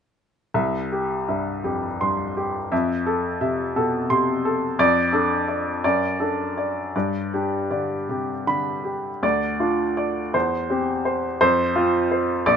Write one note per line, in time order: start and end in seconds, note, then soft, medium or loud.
0.54 2.68 C2 medium
0.54 1.14 E5 soft
0.92 1.51 G4 soft
1.29 1.86 G2 soft
1.29 1.86 E5 soft
1.64 2.00 F2 soft
1.64 2.22 G4 soft
2.01 2.58 G2 soft
2.01 2.58 C6 medium
2.37 2.72 G4 soft
2.72 4.75 F2 medium
2.72 3.27 E5 soft
3.06 3.62 A4 soft
3.41 3.96 C3 soft
3.41 3.96 E5 soft
3.76 4.10 B2 soft
3.76 4.31 A4 medium
4.10 4.65 C3 soft
4.10 4.65 C6 medium
4.45 4.79 A4 soft
4.79 5.81 F2 medium
4.79 5.34 D5 medium
5.13 5.69 D4 soft
5.13 5.69 A4 soft
5.48 5.83 D5 soft
5.84 6.91 F#2 medium
5.84 6.42 D5 medium
6.20 6.79 D4 soft
6.20 6.79 A4 soft
6.58 6.94 D5 soft
6.96 9.20 G2 soft
6.96 7.55 D5 soft
7.34 7.94 D4 soft
7.34 7.94 G4 soft
7.71 8.32 D3 soft
7.71 8.32 D5 soft
8.09 8.47 C3 soft
8.09 8.70 G4 soft
8.47 9.08 D3 soft
8.47 9.08 B5 medium
8.85 9.23 G4 soft
9.23 10.31 D2 soft
9.23 9.83 D5 medium
9.60 10.20 D4 soft
9.60 10.20 F4 soft
9.97 10.34 D5 soft
10.34 11.38 E2 soft
10.34 10.91 C5 medium
10.70 11.27 C4 soft
10.70 11.27 G4 soft
11.05 11.39 C5 soft
11.41 12.43 F2 medium
11.41 11.97 C5 medium
11.76 12.32 C4 soft
11.76 12.32 F4 medium
12.12 12.46 C5 soft
12.46 12.57 A#1 medium
12.46 12.57 D5 medium